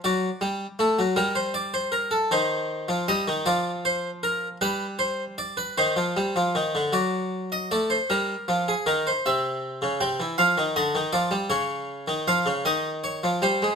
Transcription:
X:1
M:6/8
L:1/16
Q:3/8=52
K:Cm
V:1 name="Harpsichord"
d6 B c d c B =A | c4 e2 d2 c2 B2 | =B2 c2 d B c6 | d3 e d c B3 A B c |
=e4 g2 f2 _e2 d2 | [K:Dblyd] d4 f2 e2 d2 c2 |]
V:2 name="Harpsichord" clef=bass
^F,2 G,2 =A, F, G,6 | E,3 F, G, E, F,6 | G,6 E, F, G, F, E, D, | ^F,4 =A,2 G,2 =F,2 E,2 |
C,3 _D, C, =E, F, _E, =D, E, F, G, | [K:Dblyd] D,3 E, F, D, E,3 F, G, A, |]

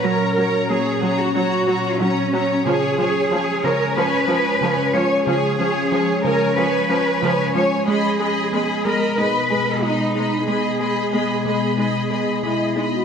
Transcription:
X:1
M:4/4
L:1/16
Q:1/4=92
K:G#m
V:1 name="Violin section"
[ca]2 [ca]2 [ca]2 [ca]2 [ca]2 [ca]2 [ca]2 [ca]2 | [cg]2 [cg]2 [cg]2 [cg]2 [cg]2 [cg]2 [cg]2 [cg]2 | [cg]2 [cg]2 [cg]2 [cg]2 [cg]2 [cg]2 [cg]2 [cg]2 | [db]2 [db]2 [db]2 [db]2 [db]2 [db]2 [db]2 [db]2 |
[db]2 [db]2 [db]2 [db]2 [db]2 [db]2 [db]2 [db]2 |]
V:2 name="Cello section"
A4 G3 F F4 C4 | G6 A2 B6 c2 | G6 A2 B6 c2 | G6 A2 B4 D4 |
G12- G2 z2 |]
V:3 name="French horn section"
z16 | z16 | z16 | z16 |
z12 E3 F |]
V:4 name="Ambient pad"
[A,,F,Cc]16 | [^E,G,Cc]16- | [^E,G,Cc]16 | [B,,G,B,d]16- |
[B,,G,B,d]16 |]
V:5 name="Synth pluck" clef=bass
F,2 F2 A,2 F,2 C2 F2 F,2 C2 | C,2 C2 ^E,2 C,2 G,2 C2 C,2 G,2 | C,2 C2 ^E,2 C,2 G,2 C2 C,2 G,2 | G,2 G2 B,2 G,2 D2 G2 G,2 D2 |
G,2 G2 B,2 G,2 D2 G2 G,2 D2 |]
V:6 name="Viola section" clef=bass
F,2 F,2 F,2 F,2 F,2 F,2 F,2 F,2 | ^E,2 E,2 E,2 E,2 E,2 E,2 E,2 E,2 | ^E,2 E,2 E,2 E,2 E,2 E,2 E,2 E,2 | G,2 G,2 G,2 G,2 G,2 G,2 G,2 G,2 |
G,2 G,2 G,2 G,2 G,2 G,2 G,2 G,2 |]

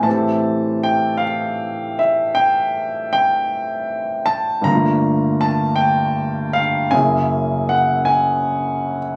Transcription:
X:1
M:4/4
L:1/16
Q:"Swing" 1/4=52
K:Aphr
V:1 name="Grand piano"
a2 g2 f2 e2 g2 g4 a2 | b2 a2 g2 f2 _a2 _g2 a3 z |]
V:2 name="Grand piano"
[A,,E,CGA]16 | [G,,D,A,B,F]8 [_G,,_D,B,_F_A]8 |]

